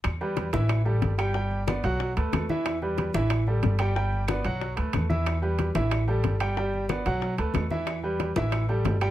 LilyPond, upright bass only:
\new Staff \with { instrumentName = "Upright bass" } { \clef bass \time 4/4 \key e \minor \tempo 4 = 184 e,4. a,,4. g,,4~ | g,,4. b,,4 d,8 e,4~ | e,4. a,,4. g,,4~ | g,,4. b,,4 d,8 e,4~ |
e,4. a,,4. g,,4~ | g,,4. b,,4 d,8 e,4~ | e,4. a,,4. g,,4 | }